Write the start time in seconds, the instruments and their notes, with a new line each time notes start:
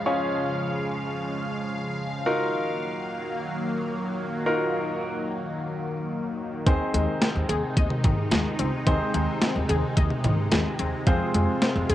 Already playing: analog synth pad C#3 F3 G#3 F5
0.06 grand piano C#4 F4 G#4 C#5
2.26 analog synth pad D#3 F#3 A#3, grand piano D#4 F4 F#4 A#4
4.46 grand piano D#4 F4 F#4 A#4
6.66 upright bass D#2, analog synth pad C3 G#3 D#4, synth arpeggio sound D#3, grand piano C4 D#4 G#4 C5, kick, closed hi-hat
6.94 upright bass D#2, synth arpeggio sound G#3, closed hi-hat
7.21 synth arpeggio sound C4, snare, closed hi-hat
7.35 upright bass D#2
7.49 upright bass D#2, synth arpeggio sound G#4, closed hi-hat, cowbell
7.77 upright bass D#2, synth arpeggio sound D#5, kick, closed hi-hat
7.90 mid tom
8.04 synth arpeggio sound D#3, upright bass D#3, kick, closed hi-hat, mid tom
8.31 upright bass D#2, synth arpeggio sound G#3, snare, closed hi-hat
8.59 upright bass C#2, synth arpeggio sound C4, closed hi-hat
8.87 upright bass D#2, synth arpeggio sound D#3, grand piano C4 D#4 G#4 C5, kick, closed hi-hat
9.14 upright bass D#2, synth arpeggio sound G#3, closed hi-hat
9.42 synth arpeggio sound C4, snare, closed hi-hat
9.56 upright bass D#2
9.69 upright bass D#2, synth arpeggio sound G#4, closed hi-hat, cowbell
9.97 upright bass D#2, synth arpeggio sound D#5, kick, closed hi-hat
10.10 mid tom
10.24 synth arpeggio sound D#3, upright bass D#3, closed hi-hat, mid tom
10.52 upright bass D#2, synth arpeggio sound G#3, snare, closed hi-hat
10.79 upright bass D#2, synth arpeggio sound C4, closed hi-hat
11.07 upright bass F2, synth arpeggio sound F3, analog synth pad F3 F4, grand piano C4 F4 G#4 C5, kick, closed hi-hat
11.34 upright bass F2, synth arpeggio sound G#3, closed hi-hat
11.62 synth arpeggio sound C4, snare, closed hi-hat
11.76 upright bass F2
11.89 upright bass F2, synth arpeggio sound G#4, closed hi-hat, cowbell